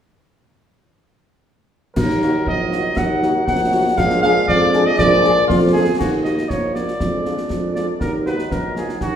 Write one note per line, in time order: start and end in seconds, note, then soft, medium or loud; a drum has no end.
1.96 2.38 D#2 medium
1.96 3.94 F#3 medium
1.96 3.94 D#4 medium
1.96 2.43 A#4 loud
1.96 concert bass drum loud
1.96 snare medium
1.96 crash medium
2.10 snare medium
2.22 2.31 A#3 medium
2.22 2.31 D#4 medium
2.22 2.31 F#4 medium
2.22 snare medium
2.46 2.88 A#1 medium
2.46 2.99 D#5 loud
2.46 concert bass drum medium
2.71 2.81 A#3 medium
2.71 2.81 D#4 medium
2.71 2.80 F#4 medium
2.71 snare medium
2.97 3.39 D#2 medium
2.97 3.46 F#5 loud
2.97 concert bass drum medium
2.97 snare medium
3.22 3.32 A#3 medium
3.22 3.31 D#4 medium
3.22 3.32 F#4 medium
3.22 snare medium
3.47 3.89 A#1 medium
3.47 3.99 F#5 loud
3.47 concert bass drum medium
3.47 snare medium
3.73 3.82 A#3 medium
3.73 3.82 D#4 medium
3.73 3.82 F#4 medium
3.96 4.40 A#1 medium
3.96 5.73 G#3 medium
3.96 5.70 D4 medium
3.96 4.22 F5 loud
3.96 concert bass drum medium
3.96 snare medium
3.96 crash soft
4.10 snare medium
4.22 4.32 A#3 medium
4.22 4.32 D4 medium
4.22 4.32 G#4 medium
4.22 4.46 F5 loud
4.22 snare medium
4.48 4.90 F2 loud
4.48 4.88 D5 loud
4.48 concert bass drum medium
4.73 4.82 A#3 medium
4.73 4.82 D4 medium
4.73 4.82 G#4 medium
4.73 snare medium
4.86 4.97 D#5 loud
4.98 5.40 A#1 loud
4.98 5.45 D5 loud
4.98 concert bass drum medium
4.98 snare medium
5.23 5.32 A#3 medium
5.23 5.32 D4 medium
5.23 5.32 G#4 medium
5.23 snare medium
5.47 5.91 F2 loud
5.47 5.59 F4 medium
5.47 concert bass drum medium
5.47 snare medium
5.73 5.82 A#3 medium
5.73 5.82 D4 medium
5.73 5.97 G#4 loud
5.73 5.82 G#4 medium
5.98 6.41 D#2 medium
5.98 6.97 A#3 medium
5.98 6.97 D#4 medium
5.98 6.10 F#4 medium
5.98 concert bass drum medium
5.98 snare medium
5.98 crash soft
6.24 6.34 A#3 medium
6.24 6.34 D#4 medium
6.24 6.34 F#4 medium
6.24 6.51 D#5 medium
6.24 snare soft
6.38 snare medium
6.49 6.92 A#1 medium
6.49 6.74 C#5 medium
6.49 concert bass drum medium
6.49 snare medium
6.74 6.83 A#3 medium
6.74 6.83 D#4 soft
6.74 6.83 F#4 soft
6.74 7.71 D5 medium
6.74 snare medium
6.88 snare soft
7.00 7.42 F2 medium
7.00 8.01 G#3 medium
7.00 8.01 D4 medium
7.00 concert bass drum medium
7.00 snare medium
7.25 7.34 G#3 medium
7.25 7.34 D4 medium
7.25 7.34 F4 soft
7.25 snare soft
7.38 snare soft
7.50 7.93 F2 medium
7.50 concert bass drum medium
7.50 snare medium
7.75 7.85 G#3 medium
7.75 7.85 D4 soft
7.75 7.85 F4 medium
7.75 7.86 D5 medium
7.75 snare medium
8.00 8.38 D#2 medium
8.00 9.16 F#3 medium
8.00 9.16 D#4 medium
8.00 8.12 A#4 medium
8.00 concert bass drum medium
8.00 snare medium
8.26 8.35 A#3 medium
8.26 8.35 D#4 medium
8.26 8.35 F#4 medium
8.26 8.54 B4 medium
8.26 snare soft
8.39 snare soft
8.51 8.93 A#1 medium
8.51 8.76 A#4 medium
8.51 concert bass drum medium
8.51 snare medium
8.76 8.86 A#3 medium
8.76 8.86 D#4 soft
8.76 8.86 F#4 medium
8.76 9.00 G#4 medium
8.76 snare medium
8.89 snare soft
9.01 9.16 D#2 medium
9.01 9.16 F#4 medium
9.01 concert bass drum medium
9.01 snare medium